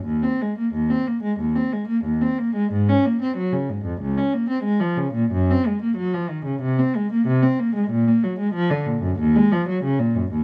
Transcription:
\new Staff \with { instrumentName = "Cello" } { \clef bass \time 4/4 \key ees \dorian \tempo 4 = 93 ees,16 c'16 aes16 bes16 ees,16 c'16 bes16 aes16 ees,16 c'16 aes16 bes16 ees,16 c'16 bes16 aes16 | aes,16 des'16 bes16 c'16 ges16 des16 aes,16 f,16 des,16 des'16 bes16 c'16 aes16 f16 des16 bes,16 | ges,16 c'16 aes16 bes16 ges16 f16 ees16 des16 c16 c'16 aes16 bes16 c16 c'16 bes16 aes16 | bes,16 bes16 ges16 aes16 f16 d16 bes,16 ges,16 ees,16 aes16 f16 ges16 des16 bes,16 ges,16 ees,16 | }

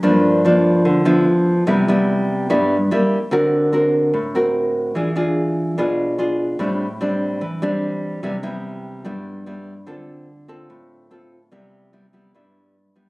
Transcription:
\new Staff \with { instrumentName = "Nylon-string guitar" } { \time 4/4 \key c \major \tempo 4 = 146 << { <f bes d'>4 <f bes d'>4. <f b e'>4. | <g b e'>8 <g b e'>4. <g b e'>8 r8 <g bes e'>8 r8 | <c' fis' bes'>4 <c' fis' bes'>4 r8 <c' fis' bes'>4. | <d' f' gis'>8 <d' f' gis'>4. <d' f' gis'>4 <d' f' gis'>4 |
<g c' d'>8 r8 <g c' d'>4 r8 <g c' d'>4. | <g b e'>8 <g b e'>4. <g b e'>4 <g b e'>8 r8 | <c' f' a'>4 r8 <c' f' a'>4. <c' f' a'>8 r8 | <g b e'>4 <g b e'>8 <g b e'>8 <g b e'>4 r8 <g b e'>8 | } \\ { g,2 d4 r4 | c2 g,4 r4 | d2 a,2 | e2 b,2 |
a,2 e2 | c2 g,2 | d2 a,2 | c2 g,2 | } >> }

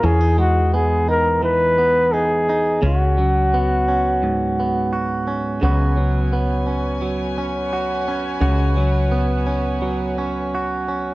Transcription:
<<
  \new Staff \with { instrumentName = "String section" } { \time 4/4 \key cis \mixolydian \tempo 4 = 86 r1 | r1 | <fis' b' cis'' gis''>1~ | <fis' b' cis'' gis''>1 | }
  \new Staff \with { instrumentName = "Flugelhorn" } { \time 4/4 \key cis \mixolydian gis'8 fis'8 gis'8 ais'8 b'4 gis'4 | fis'2. r4 | r1 | r1 | }
  \new Staff \with { instrumentName = "Clean electric guitar" } { \time 4/4 \key cis \mixolydian << { cis'16 dis'8. b8 dis'4 b8 dis'8 dis'8 | cis'4 b8 cis'4 b8 fis'8 cis'8 | <fis b cis' fis'>4 b8 cis'4 cis'8 fis'8 cis'8 | fis'4 b8 cis'4 cis'8 fis'8 cis'8 | } \\ { e8 gis4. e2 | cis8 fis4. gis,2 | cis8 fis4. fis2 | cis8 fis4. fis2 | } >> }
  \new Staff \with { instrumentName = "Fretless electric bass" } { \clef bass \time 4/4 \key cis \mixolydian e,1 | cis,1 | cis,1 | cis,1 | }
>>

